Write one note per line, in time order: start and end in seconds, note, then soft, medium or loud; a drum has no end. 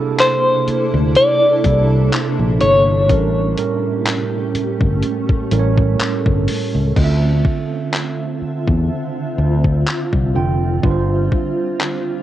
0.00 1.64 C3 medium
0.00 3.05 C3 medium
0.00 1.64 A#3 medium
0.00 3.05 A#3 medium
0.00 1.65 D4 medium
0.00 3.05 D4 medium
0.00 1.65 E4 medium
0.00 3.05 E4 medium
0.00 3.11 G#4 medium
0.00 1.65 A4 loud
0.00 3.05 A4 medium
0.19 1.12 C5 loud
0.19 clap loud
0.19 closed hi-hat medium
0.68 muted fretless electric bass stroke soft
0.68 closed hi-hat medium
0.94 1.14 D2 medium
1.15 2.17 D5 loud
1.15 closed hi-hat medium
1.64 2.09 C2 loud
1.64 2.65 C3 medium
1.64 2.65 A#3 medium
1.64 2.66 D4 medium
1.64 2.66 E4 medium
1.64 2.66 A4 medium
1.64 kick medium
1.64 closed hi-hat medium
2.12 clap loud
2.12 closed hi-hat medium
2.17 2.61 C5 loud
2.39 2.59 A#1 medium
2.61 3.10 G1 medium
2.61 5.96 C#5 medium
2.61 closed hi-hat medium
3.09 3.54 A1 loud
3.09 3.44 A2 medium
3.09 3.44 G3 medium
3.09 6.93 A3 medium
3.09 6.93 C#4 medium
3.09 3.45 C#4 medium
3.09 5.01 G4 medium
3.09 3.45 A#4 medium
3.09 kick loud
3.09 closed hi-hat medium
3.57 4.93 A2 medium
3.57 4.93 G3 medium
3.57 4.94 C#4 medium
3.57 4.94 A#4 medium
3.57 closed hi-hat medium
4.06 clap loud
4.06 closed hi-hat medium
4.55 muted fretless electric bass stroke soft
4.55 closed hi-hat medium
4.81 5.01 G1 medium
4.81 kick medium
5.03 6.95 A4 medium
5.03 closed hi-hat medium
5.29 kick medium
5.51 5.96 A1 medium
5.51 6.52 A2 medium
5.51 6.53 G3 medium
5.51 6.53 C#4 medium
5.51 5.59 A#4 medium
5.51 closed hi-hat medium
5.59 6.56 C#5 loud
5.77 kick medium
5.99 muted fretless electric bass stroke soft
5.99 clap loud
5.99 closed hi-hat medium
6.26 6.46 G1 medium
6.26 kick loud
6.48 open hi-hat medium
6.75 6.95 C#2 medium
6.96 7.41 D2 loud
6.96 8.32 D3 medium
6.96 10.80 D3 medium
6.96 12.23 C4 medium
6.96 8.32 C4 medium
6.96 12.23 F4 medium
6.96 8.32 F4 medium
6.96 7.04 D#5 medium
6.96 10.80 E5 medium
6.96 kick loud
6.96 crash medium
7.04 8.36 E5 medium
7.45 kick medium
7.94 clap loud
8.42 muted fretless electric bass stroke soft
8.68 8.88 E2 medium
8.68 kick medium
9.38 9.83 D2 medium
9.64 kick medium
9.87 clap loud
10.13 10.33 C2 medium
10.13 kick medium
10.35 10.80 F1 medium
10.35 10.70 D3 medium
10.35 10.70 C4 medium
10.35 10.70 F4 medium
10.35 10.70 G5 medium
10.83 11.28 G1 loud
10.83 12.19 G3 medium
10.83 12.23 G3 medium
10.83 12.19 D4 medium
10.83 12.19 F4 medium
10.83 10.91 B4 medium
10.83 kick loud
10.91 12.23 C5 medium
11.32 kick medium
11.80 clap loud